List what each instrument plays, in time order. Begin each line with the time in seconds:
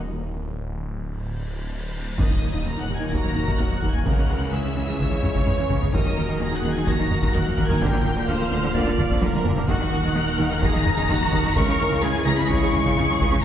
Already playing: detuned saw bass D#1, french horn section F#3 A#4, analog synth pad F#3 A#3 D#4 A#4
0.31 detuned saw bass D1, cymbal swell
2.18 detuned saw bass D#1, cello section D#2, double bass section D#2, synth arpeggio sound D#3, analog synth pad F#3 A#3 D#4 A#4, french horn section F#3 A#4, violin section D#5 D#6, taiko, impact
2.30 cello section D#2, synth arpeggio sound D#4
2.42 cello section D#2, double bass section D#2, synth arpeggio sound A#3
2.53 cello section D#2, synth arpeggio sound D#3
2.65 cello section D#2, double bass section D#2, synth arpeggio sound A#3, violin section A#5 A#6
2.77 cello section D#2, synth arpeggio sound D#4, violin section F#5
2.81 violin section F#6
2.88 cello section D#2, double bass section D#2, synth arpeggio sound D#3
2.96 synth arpeggio sound D#4, violin section G#5 G#6
3.01 cello section D#2
3.12 cello section D#2, double bass section D#2, synth arpeggio sound D#3, viola section F#4, violin section A#5 A#6, taiko
3.24 cello section D#2, synth arpeggio sound F#3
3.36 double bass section D#2, cello section D#2, synth arpeggio sound D#4, taiko low-mid
3.47 cello section D#2, synth arpeggio sound D#3, taiko
3.59 cello section D#2, double bass section D#2, synth arpeggio sound A#3, violin section F#5 F#6, taiko low-mid
3.71 cello section D#2, synth arpeggio sound F#3, violin section F#6
3.77 violin section F#5
3.82 double bass section D#2, cello section D#2, synth arpeggio sound D#3, taiko
3.91 cello section D#2, synth arpeggio sound A#3, violin section G#5 G#6, taiko low-mid
4.05 detuned saw bass C#2, double bass section C#2, cello section C#3, synth arpeggio sound C#3, analog synth pad E3 G#3 C#4 C#5, french horn section G#3 G#4, viola section A#4, violin section F#5 F#6, taiko
4.17 cello section C#3, synth arpeggio sound C#4
4.29 double bass section C#2, cello section C#3, synth arpeggio sound G#3
4.41 cello section C#3, synth arpeggio sound C#3
4.52 double bass section C#2, cello section C#3, synth arpeggio sound G#3, viola section G#4, violin section E5 E6
4.64 cello section C#3, synth arpeggio sound C#4
4.76 double bass section C#2, cello section C#3, synth arpeggio sound C#3
4.87 cello section C#3, synth arpeggio sound C#4
4.99 double bass section C#2, cello section C#3, synth arpeggio sound C#3, viola section C#5, taiko
5.11 cello section C#3, synth arpeggio sound E3
5.22 double bass section C#2, cello section C#3, synth arpeggio sound C#4, taiko low-mid
5.35 cello section C#3, synth arpeggio sound C#3, taiko
5.46 double bass section C#2, cello section C#3, synth arpeggio sound G#3, taiko low-mid
5.58 cello section C#3, synth arpeggio sound E3
5.69 double bass section C#2, cello section C#3, synth arpeggio sound C#3, taiko
5.82 cello section C#3, synth arpeggio sound G#3, taiko low-mid
5.93 detuned saw bass D#1, double bass section D#2, cello section D#3, synth arpeggio sound D#3, analog synth pad F#3 A#3 D#4 A#4, french horn section A#3 F#4, viola section A#4, violin section D#5 D#6, taiko
6.05 cello section D#3, synth arpeggio sound D#4
6.17 double bass section D#2, cello section D#3, synth arpeggio sound A#3
6.28 cello section D#3, synth arpeggio sound D#3
6.40 double bass section D#2, cello section D#3, synth arpeggio sound A#3, viola section G#4, violin section A#5 A#6
6.52 cello section D#3, synth arpeggio sound D#4
6.56 violin section F#5 F#6
6.63 double bass section D#2, cello section D#3, synth arpeggio sound D#3
6.72 cello section D#3, synth arpeggio sound D#4, violin section G#5 G#6
6.87 double bass section D#2, cello section D#3, synth arpeggio sound D#3, viola section F#4, violin section A#5 A#6, taiko
6.99 cello section D#3, synth arpeggio sound F#3
7.11 double bass section D#2, cello section D#3, synth arpeggio sound D#4, taiko low-mid
7.22 cello section D#3, synth arpeggio sound D#3, taiko
7.33 double bass section D#2, cello section D#3, synth arpeggio sound A#3, viola section A#4, violin section F#5 F#6, taiko low-mid
7.46 cello section D#3, synth arpeggio sound F#3, violin section F#5
7.51 violin section F#6
7.57 double bass section D#2, synth arpeggio sound D#3, cello section D#3, taiko
7.66 synth arpeggio sound A#3, violin section G#5 G#6, taiko low-mid
7.70 cello section D#3
7.80 detuned saw bass D1, double bass section D2, cello section D3, analog synth pad F3 C4, synth arpeggio sound A#3, french horn section F4, violin section G5 G6, taiko
7.93 cello section D3, synth arpeggio sound A#4
8.04 double bass section D2, cello section D3, synth arpeggio sound F4
8.17 cello section D3, synth arpeggio sound A#3
8.27 double bass section D2, cello section D3, synth arpeggio sound F4, viola section C5, violin section F5 F6
8.40 cello section D3, synth arpeggio sound A#4
8.51 double bass section D2, cello section D3, synth arpeggio sound A#3
8.64 cello section D3, synth arpeggio sound A#4
8.74 double bass section D2, cello section D3, synth arpeggio sound A#3, viola section D5, taiko
8.87 cello section D3, synth arpeggio sound D4
8.98 double bass section D2, cello section D3, synth arpeggio sound A#4, taiko low-mid
9.10 cello section D3, synth arpeggio sound A#3, taiko
9.21 double bass section D2, cello section D3, synth arpeggio sound F4, viola section A#4, taiko high
9.33 cello section D3, synth arpeggio sound D4, taiko high
9.44 double bass section D2, cello section D3, synth arpeggio sound A#3, taiko low-mid
9.57 cello section D3, synth arpeggio sound F4, taiko low
9.68 detuned saw bass D#1, double bass section D#2, analog synth pad D#3 D#4, cello section D#3, synth arpeggio sound D#3, french horn section A#3 D#4, viola section F#4, violin section F#5 F#6, taiko
9.80 cello section D#3, synth arpeggio sound D#4
9.91 double bass section D#2, cello section D#3, synth arpeggio sound A#3
10.04 synth arpeggio sound D#3, cello section D#3
10.15 double bass section D#2, cello section D#3, synth arpeggio sound A#3, viola section A#4
10.27 cello section D#3, synth arpeggio sound D#4
10.38 double bass section D#2, cello section D#3, synth arpeggio sound D#3
10.50 cello section D#3, synth arpeggio sound D#4
10.62 double bass section D#2, synth arpeggio sound D#3, cello section D#3, viola section G#4, violin section A#5 A#6, taiko
10.74 cello section D#3, synth arpeggio sound F#3
10.85 double bass section D#2, cello section D#3, synth arpeggio sound D#4, taiko low-mid
10.97 synth arpeggio sound D#3, cello section D#3, taiko
11.09 double bass section D#2, cello section D#3, synth arpeggio sound A#3, viola section F#4, taiko low-mid
11.20 cello section D#3, synth arpeggio sound F#3
11.32 double bass section D#2, cello section D#3, synth arpeggio sound D#3, taiko
11.44 cello section D#3, synth arpeggio sound A#3, taiko low-mid
11.55 double bass section C#2, detuned saw bass C#2, synth arpeggio sound C#3, cello section C#3, analog synth pad E3 G#3 C#4 C#5, french horn section G#3 E4, viola section A#4, violin section C#6 C#7, taiko
11.68 cello section C#3, synth arpeggio sound C#4
11.79 double bass section C#2, cello section C#3, synth arpeggio sound G#3
11.91 synth arpeggio sound C#3, cello section C#3
12.02 double bass section C#2, cello section C#3, synth arpeggio sound G#3, viola section G#4, violin section G#5 G#6
12.14 cello section C#3, synth arpeggio sound C#4
12.26 double bass section C#2, synth arpeggio sound C#3, cello section C#3, violin section A#5 A#6
12.38 cello section C#3, synth arpeggio sound C#4, violin section B5 B6
12.49 double bass section C#2, synth arpeggio sound C#3, cello section C#3, violin section C#6 C#7, taiko
12.61 cello section C#3, synth arpeggio sound E3
12.73 double bass section C#2, cello section C#3, synth arpeggio sound C#4, taiko low-mid
12.84 synth arpeggio sound C#3, cello section C#3, taiko
12.96 double bass section C#2, cello section C#3, synth arpeggio sound G#3, viola section G#4, taiko low-mid
13.08 cello section C#3, synth arpeggio sound E3
13.20 double bass section C#2, synth arpeggio sound C#3, cello section C#3, taiko
13.31 cello section C#3, synth arpeggio sound G#3, taiko low-mid